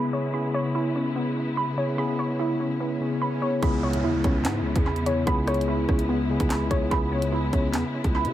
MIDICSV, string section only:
0, 0, Header, 1, 2, 480
1, 0, Start_track
1, 0, Key_signature, 4, "minor"
1, 0, Tempo, 410959
1, 395, Time_signature, 4, 2, 24, 8
1, 9734, End_track
2, 0, Start_track
2, 0, Title_t, "String section"
2, 0, Program_c, 0, 48
2, 0, Note_on_c, 0, 49, 78
2, 0, Note_on_c, 0, 56, 68
2, 0, Note_on_c, 0, 59, 71
2, 0, Note_on_c, 0, 64, 81
2, 356, Note_off_c, 0, 49, 0
2, 393, Note_on_c, 0, 49, 79
2, 4188, Note_off_c, 0, 56, 0
2, 4188, Note_off_c, 0, 59, 0
2, 4188, Note_off_c, 0, 64, 0
2, 4196, Note_off_c, 0, 49, 0
2, 4236, Note_on_c, 0, 49, 79
2, 4236, Note_on_c, 0, 56, 77
2, 4236, Note_on_c, 0, 59, 74
2, 4236, Note_on_c, 0, 64, 91
2, 9734, Note_off_c, 0, 49, 0
2, 9734, Note_off_c, 0, 56, 0
2, 9734, Note_off_c, 0, 59, 0
2, 9734, Note_off_c, 0, 64, 0
2, 9734, End_track
0, 0, End_of_file